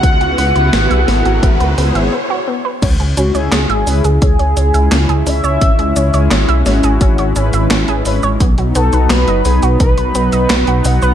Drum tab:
CC |----------------|x---------------|----------------|----------------|
HH |xxoxxxoxxxox----|xxxxxxoxxxxxxxo-|xxxxxxoxxxxxxxo-|xxxxxxoxxxxxxxo-|
SH |----------------|x-xxx-xxx-xxx-xx|x-xxx-xxx-xxx-xx|x-xxx-xxx-xxx-xx|
CP |----------------|----x-------x---|----x-------x---|----x-------x---|
SD |----o-o---------|----o-------o---|----o-o-----o---|----o-------o---|
BD |o-------o-------|o-------o-------|o-------o-------|o-------o-------|